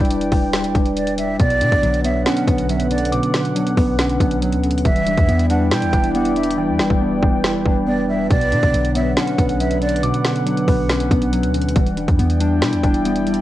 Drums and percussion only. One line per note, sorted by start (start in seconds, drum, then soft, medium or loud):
0.05 closed hi-hat soft
0.11 closed hi-hat medium
0.21 closed hi-hat medium
0.32 kick loud
0.32 open hi-hat medium
0.53 snare loud
0.53 closed hi-hat medium
0.64 closed hi-hat medium
0.75 kick medium
0.75 closed hi-hat medium
0.86 closed hi-hat medium
0.97 closed hi-hat medium
1.07 closed hi-hat medium
1.18 closed hi-hat medium
1.40 kick loud
1.40 closed hi-hat medium
1.50 closed hi-hat medium
1.61 closed hi-hat medium
1.72 kick medium
1.72 closed hi-hat medium
1.83 closed hi-hat medium
1.94 closed hi-hat medium
2.04 closed hi-hat medium
2.26 snare loud
2.26 closed hi-hat medium
2.37 closed hi-hat medium
2.48 kick medium
2.48 closed hi-hat medium
2.58 closed hi-hat medium
2.69 closed hi-hat medium
2.80 closed hi-hat medium
2.91 closed hi-hat medium
2.98 closed hi-hat medium
3.05 closed hi-hat medium
3.12 closed hi-hat medium
3.23 closed hi-hat medium
3.34 snare loud
3.34 closed hi-hat medium
3.45 closed hi-hat medium
3.56 closed hi-hat medium
3.67 closed hi-hat medium
3.77 kick medium
3.77 open hi-hat medium
3.99 snare loud
3.99 closed hi-hat medium
4.09 closed hi-hat medium
4.20 kick loud
4.20 closed hi-hat medium
4.31 closed hi-hat medium
4.42 closed hi-hat medium
4.53 closed hi-hat medium
4.64 closed hi-hat medium
4.71 closed hi-hat medium
4.78 closed hi-hat medium
4.85 kick loud
4.85 closed hi-hat medium
4.96 closed hi-hat medium
5.07 closed hi-hat medium
5.17 kick medium
5.17 closed hi-hat medium
5.29 closed hi-hat medium
5.39 closed hi-hat medium
5.50 closed hi-hat medium
5.71 snare loud
5.71 closed hi-hat medium
5.82 closed hi-hat medium
5.93 kick medium
5.93 closed hi-hat medium
6.04 closed hi-hat medium
6.15 closed hi-hat medium
6.25 closed hi-hat medium
6.36 closed hi-hat medium
6.43 closed hi-hat medium
6.51 closed hi-hat medium
6.79 snare loud
6.90 kick medium
7.23 kick medium
7.44 snare loud
7.66 kick medium
8.30 kick loud
8.30 closed hi-hat medium
8.41 closed hi-hat medium
8.52 closed hi-hat medium
8.63 kick medium
8.63 closed hi-hat medium
8.74 closed hi-hat medium
8.85 closed hi-hat medium
8.95 closed hi-hat medium
9.17 snare loud
9.17 closed hi-hat medium
9.27 closed hi-hat medium
9.38 kick medium
9.38 closed hi-hat medium
9.49 closed hi-hat medium
9.60 closed hi-hat medium
9.71 closed hi-hat medium
9.82 closed hi-hat medium
9.89 closed hi-hat medium
9.96 closed hi-hat medium
10.03 closed hi-hat medium
10.14 closed hi-hat medium
10.25 snare loud
10.25 closed hi-hat medium
10.36 closed hi-hat soft
10.47 closed hi-hat medium
10.57 closed hi-hat medium
10.68 kick medium
10.68 open hi-hat medium
10.89 snare loud
10.89 closed hi-hat medium
11.00 closed hi-hat medium
11.11 kick loud
11.11 closed hi-hat medium
11.22 closed hi-hat medium
11.33 closed hi-hat medium
11.43 closed hi-hat medium
11.54 closed hi-hat medium
11.61 closed hi-hat medium
11.69 closed hi-hat medium
11.76 kick loud
11.76 closed hi-hat medium
11.87 closed hi-hat medium
11.97 closed hi-hat medium
12.08 kick medium
12.08 closed hi-hat soft
12.19 closed hi-hat medium
12.30 closed hi-hat medium
12.41 closed hi-hat medium
12.62 snare loud
12.62 closed hi-hat medium
12.73 closed hi-hat medium
12.84 kick medium
12.84 closed hi-hat medium
12.94 closed hi-hat medium
13.05 closed hi-hat medium
13.16 closed hi-hat medium
13.27 closed hi-hat medium
13.34 closed hi-hat medium